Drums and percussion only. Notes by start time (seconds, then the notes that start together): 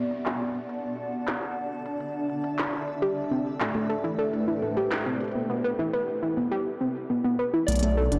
0.11 closed hi-hat
0.26 clap
0.55 closed hi-hat
0.69 closed hi-hat
0.84 closed hi-hat
1.27 clap, closed hi-hat
1.86 closed hi-hat
2.00 closed hi-hat
2.29 closed hi-hat
2.44 closed hi-hat
2.59 clap
2.88 closed hi-hat
3.02 closed hi-hat
3.17 closed hi-hat
3.24 closed hi-hat
3.31 closed hi-hat
3.39 closed hi-hat
3.60 clap, closed hi-hat
4.19 closed hi-hat
4.33 closed hi-hat
4.62 closed hi-hat
4.77 closed hi-hat
4.91 clap
5.20 closed hi-hat
5.24 closed hi-hat
5.28 closed hi-hat
5.31 closed hi-hat
7.68 closed hi-hat
7.72 closed hi-hat
7.76 closed hi-hat
7.79 closed hi-hat
7.83 closed hi-hat
8.12 closed hi-hat